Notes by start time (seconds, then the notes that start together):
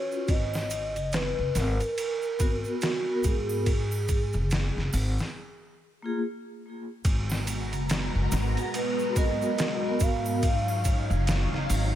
Already playing: C#4 F4 F#4 C#5
0.12 shaker
0.28 G#1 D#5, kick, ride, shaker
0.54 snare, triangle
0.70 ride, shaker
0.96 F#1, ride, shaker
1.12 B4, snare, ride, shaker
1.39 F#1
1.55 G#1 A#4, snare, ride, triangle, shaker
1.80 ride, shaker
1.98 ride, shaker
2.22 shaker
2.39 G#1 B3 F#4 A#4, kick, ride, shaker
2.64 shaker
2.81 F#4, snare, ride, shaker
3.06 B3 F#4 A#4
3.23 G#2 G#4, kick, ride, shaker
3.49 triangle, shaker
3.66 kick, ride, shaker
3.91 triangle, shaker
4.08 kick, ride, shaker
4.33 F#1, shaker
4.50 snare, ride, shaker
4.77 F#1, snare
4.93 G#1, open hi-hat, triangle, shaker
5.19 snare, shaker
6.02 A#3 F4 G#4
7.05 G#1 G#3 B3 F#4 A#5, kick, ride, shaker
7.30 snare, triangle
7.47 ride, shaker
7.73 F#1, ride, shaker
7.89 snare, ride, shaker
8.15 F#1
8.32 G#1, snare, ride, triangle, shaker
8.57 ride, shaker
8.74 B4, ride, shaker
8.99 shaker
9.15 G#1 B3 F#4 A#4 D#5, kick, ride, shaker
9.42 shaker
9.58 snare, ride, shaker
9.83 B3 F#4 A#4
10.00 G#2 F5, kick, ride, shaker
10.25 triangle, shaker
10.43 F#3 D#4 C#5 F5, kick, ride, shaker
10.68 triangle
10.84 kick, ride, shaker
11.10 F#1, shaker
11.27 snare, ride, shaker
11.52 F#1, snare
11.70 G#1, open hi-hat, triangle, shaker